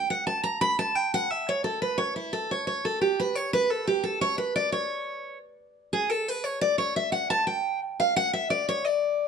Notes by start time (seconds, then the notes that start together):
0.10 F#5
0.27 A5
0.44 A#5
0.61 B5
0.79 A5
0.95 G5
1.14 F#5
1.30 E5
1.49 C#5
1.64 A4
1.82 B4
1.98 C#5
2.16 E4
2.33 A4
2.51 C#5
2.67 C#5
2.85 A4
3.01 G4
3.20 B4
3.35 C#5
3.53 B4
3.70 A4
3.87 G4
4.03 A4
4.21 C#5
4.38 B4
4.56 D5
4.72 C#5
5.93 G#4
6.10 A4
6.28 B4
6.44 C#5
6.61 D5
6.78 C#5
6.96 E5
7.12 F#5
7.30 A5
7.47 G5
8.00 F5
8.16 F#5
8.33 E5
8.50 D5
8.69 C#5
8.85 D5